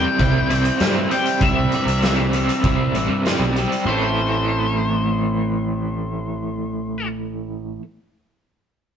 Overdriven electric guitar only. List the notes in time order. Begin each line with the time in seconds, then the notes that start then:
Already playing: C3 G3 C4
0.19 C3 G3 C4
0.50 C3 G3 C4
0.80 C3 G3 C4
1.10 C3 G3 C4
1.42 C3 G3 C4
1.74 C3 G3 C4
2.04 C3 G3 C4
2.34 C3 G3 C4
2.64 C3 G3 C4
2.95 C3 G3 C4
3.26 C3 G3 C4
3.58 C3 G3 C4
3.86 A2 E3
3.90 A3